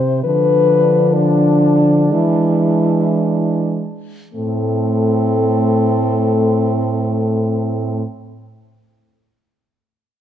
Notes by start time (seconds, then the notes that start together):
Already playing: C3 C5
0.24 D3 F3 D4 B4
1.14 D4
2.12 E3 G#3 E4
4.34 A2 A3 C4 A4